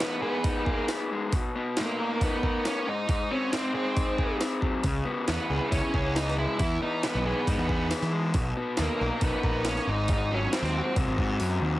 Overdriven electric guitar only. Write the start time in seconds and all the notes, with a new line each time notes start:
Already playing: E3 B3
0.00 D#4
0.22 G#4
0.44 D#4
0.66 G#4
0.89 B3
1.11 G#3
1.33 B2
1.55 B3
1.78 D#4
2.00 A#4
2.21 D#4
2.43 A#4
2.65 B3
2.88 G#2
3.08 G#2
3.31 C4
3.53 D#4
3.74 G#4
3.95 D#4
4.18 G#4
4.40 C4
4.61 F#3
4.83 C#3
5.05 B3
5.28 E4
5.50 G#4
5.71 E4
5.94 G#4
6.16 B3
6.38 G#3
6.60 E3
6.82 B3
7.04 D#4
7.26 G#4
7.47 D#4
7.68 G#4
7.90 B3
8.12 G#3
8.35 B2
8.57 B3
8.79 D#4
9.00 A#4
9.22 D#4
9.44 A#4
9.66 B3
9.87 G#2
10.10 G#2
10.31 F#3
10.53 C4
10.75 F#4
10.97 C4
11.20 F#4
11.40 F#3
11.61 D#3